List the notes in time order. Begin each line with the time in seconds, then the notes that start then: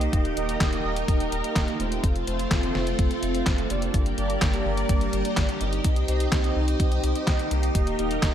Already playing: A#3 D#4 G4 C5 D#5
0.01 closed hi-hat
0.13 D#1 A#4, kick, closed hi-hat
0.25 closed hi-hat
0.37 D#1 A#3 D#4 G4 D#5, closed hi-hat
0.49 closed hi-hat
0.61 D#1, kick, snare, clap, closed hi-hat
0.73 A#3 D#4 G4 D#5, closed hi-hat
0.84 D#1
0.96 closed hi-hat
1.08 D#1 A#3 D#4 G4 D#5, kick, closed hi-hat
1.20 closed hi-hat
1.32 D#1, closed hi-hat
1.44 A#3 D#4 G4 D#5, closed hi-hat
1.56 D#1, kick, snare, clap, closed hi-hat
1.68 closed hi-hat
1.80 D#1 A3 C4 F4 C5, closed hi-hat
1.92 closed hi-hat
2.04 F1 C4 F4 A4, kick, closed hi-hat
2.16 closed hi-hat
2.27 F1 A3 C4 F4 C5, closed hi-hat
2.39 closed hi-hat
2.51 F1, kick, snare, clap, closed hi-hat
2.63 A3 C4 F4 C5, closed hi-hat
2.75 F1, snare
2.87 closed hi-hat
2.99 F1 A3 C4 F4 C5, kick, closed hi-hat
3.11 closed hi-hat
3.23 F1, closed hi-hat
3.35 A3 C4 F4 C5, closed hi-hat
3.46 F1, kick, snare, clap, closed hi-hat
3.58 closed hi-hat
3.70 F1 A#3 D4 G4 D5, closed hi-hat
3.82 closed hi-hat
3.94 G1 G3 G4 A#4 D5, kick, closed hi-hat
4.06 closed hi-hat
4.18 G1 A#3 D4 G4 D5, closed hi-hat
4.30 closed hi-hat
4.42 G1, kick, snare, clap, closed hi-hat
4.54 A#3 D4 G4 D5, closed hi-hat
4.65 G1
4.77 closed hi-hat
4.89 G1 A#3 D4 G4 D5, kick, closed hi-hat
5.01 closed hi-hat
5.13 G1, closed hi-hat
5.25 A#3 D4 G4 D5, closed hi-hat
5.37 G1, kick, snare, clap, closed hi-hat
5.49 closed hi-hat
5.61 G1 C4 D#4 G4 D#5, closed hi-hat
5.73 closed hi-hat
5.84 C2 D#4 C5, kick, closed hi-hat
5.96 closed hi-hat
6.08 C2 C4 D#4 G4 D#5, closed hi-hat
6.20 closed hi-hat
6.32 C2, kick, snare, clap, closed hi-hat
6.44 C4 D#4 G4 D#5, closed hi-hat
6.56 C2
6.68 closed hi-hat
6.80 C2 C4 D#4 G4 D#5, kick, closed hi-hat
6.92 closed hi-hat
7.04 C2, closed hi-hat
7.15 C4 D#4 G4 D#5, closed hi-hat
7.27 C2, kick, snare, clap, closed hi-hat
7.39 closed hi-hat
7.51 C2 A#3 D#4 G4 D#5, closed hi-hat
7.63 closed hi-hat
7.75 D#1 A#4, kick, closed hi-hat
7.87 closed hi-hat
7.99 D#1 A#3 D#4 G4 D#5, closed hi-hat
8.11 closed hi-hat
8.23 D#1, kick, snare, clap, closed hi-hat